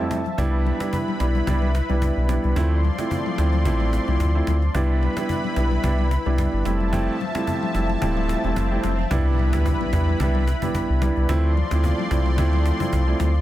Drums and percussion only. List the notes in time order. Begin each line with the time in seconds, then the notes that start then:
0.11 cajon slap, high conga
0.25 cajon slap, high conga
0.38 cajon bass
0.65 cajon slap, high conga
0.80 cajon slap
0.93 cajon bass, low conga
1.08 high conga
1.20 cajon slap
1.35 cajon slap, high conga
1.47 cajon bass, cajon slap, low conga
1.62 high conga
1.75 cajon slap
1.89 cajon slap, high conga
2.02 cajon bass, cajon slap
2.29 cajon slap, high conga
2.43 cajon slap, high conga
2.56 cajon bass
2.83 cajon slap, high conga
2.98 cajon slap
3.11 cajon bass, low conga
3.26 high conga
3.38 cajon slap
3.53 cajon slap, high conga
3.65 cajon bass, cajon slap, low conga
3.80 high conga
3.93 cajon slap
4.07 cajon slap, high conga
4.20 cajon bass, cajon slap
4.47 cajon slap, high conga
4.61 cajon slap, high conga
4.75 cajon bass
5.02 cajon slap, high conga
5.17 cajon slap
5.29 cajon bass, low conga
5.44 high conga
5.56 cajon slap
5.71 cajon slap, high conga
5.84 cajon bass, cajon slap, low conga
5.99 high conga
6.11 cajon slap
6.25 cajon slap, high conga
6.38 cajon bass, cajon slap
6.65 cajon slap, high conga
6.80 cajon slap, high conga
6.93 cajon bass
7.20 cajon slap, high conga
7.35 cajon slap
7.47 cajon bass, low conga
7.63 high conga
7.75 cajon slap
7.90 cajon slap, high conga
8.02 cajon bass, cajon slap, low conga
8.17 high conga
8.29 cajon slap
8.43 cajon slap, high conga
8.56 cajon bass, cajon slap
8.84 cajon slap, high conga
8.98 cajon slap, high conga
9.11 cajon bass
9.38 cajon slap, high conga
9.53 cajon slap
9.65 cajon bass, low conga
9.81 high conga
9.93 cajon bass, cajon slap
10.08 high conga
10.20 cajon bass, cajon slap, low conga
10.35 high conga
10.47 cajon slap
10.62 cajon bass, high conga
10.74 cajon bass, cajon slap
11.02 cajon slap, high conga, low conga
11.16 cajon slap
11.29 cajon bass
11.56 cajon slap, high conga
11.71 cajon slap
11.84 cajon bass, low conga
11.99 high conga
12.11 cajon bass, cajon slap
12.26 cajon slap, high conga
12.38 cajon bass, cajon slap, low conga
12.53 high conga
12.66 cajon slap
12.80 cajon bass, high conga
12.93 cajon bass, cajon slap
13.20 cajon slap, high conga, low conga
13.34 cajon slap